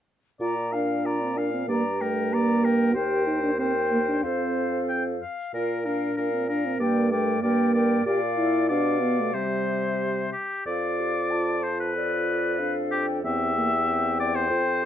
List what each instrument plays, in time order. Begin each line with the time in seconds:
0.40 bassoon A#2, french horn F4, clarinet F4, oboe D5, flute A#5
0.72 french horn D4, clarinet A#4, oboe F5, flute F5
1.05 clarinet F4, oboe D5, flute A#5
1.22 french horn C4
1.37 french horn D4, clarinet A#4, flute F5, oboe F5
1.53 french horn C4
1.68 bassoon G2, french horn A#3, clarinet G4, oboe D5, flute A#5
2.00 french horn A3, clarinet A#4, oboe A#4, flute G5
2.32 french horn A#3, clarinet G4, oboe D5, flute A#5
2.64 clarinet A#4, oboe A#4, flute G5
2.94 bassoon D#2, french horn G4, clarinet A#4, oboe C5, flute G5
3.27 french horn D#4
3.43 french horn D4
3.58 french horn C4, clarinet A#4, oboe C5, flute G5
3.91 french horn A#3
4.08 french horn D4
4.23 bassoon F2, french horn C4, clarinet A4, oboe C5, flute F5
4.89 oboe G5
5.21 oboe F5
5.54 bassoon A#2, french horn F4, oboe A#4, clarinet A#4, flute F5
5.84 french horn D4, oboe A#4, clarinet A#4, flute F5
6.16 bassoon A#2, oboe A#4, clarinet A#4, flute F5
6.33 french horn C4
6.48 french horn D4, oboe A#4, clarinet A#4, flute F5
6.66 french horn C4
6.80 bassoon G2, french horn A#3, clarinet A#4, oboe D5, flute G5
7.11 french horn A3, clarinet A#4, oboe D5, flute G5
7.42 bassoon G2, french horn A#3, clarinet A#4, oboe D5, flute G5
7.74 clarinet A#4, oboe D5, flute G5
8.05 bassoon A#2, french horn G4, clarinet A#4, oboe D5, flute F5
8.37 french horn E4, clarinet A4
8.69 bassoon B2, french horn D4, clarinet G4, oboe D5, flute F5
9.02 french horn B3
9.19 french horn A3
9.33 bassoon C3, french horn G3, clarinet G4, oboe C5, flute E5
10.32 oboe G4
10.66 bassoon F2, french horn F4, clarinet A4, oboe D5, flute F5
10.99 clarinet G4
11.30 clarinet F4, flute A5
11.63 oboe C5
11.80 oboe B4
11.95 clarinet A4, flute D5
12.58 french horn D4, flute F5
12.91 oboe G4, flute G5
13.23 bassoon E2, french horn C4, clarinet G4, oboe E5, flute G5
13.57 french horn A#3
13.87 french horn C4
14.20 oboe D5
14.35 oboe C5
14.50 bassoon F2, french horn C4, clarinet F4
14.81 clarinet G4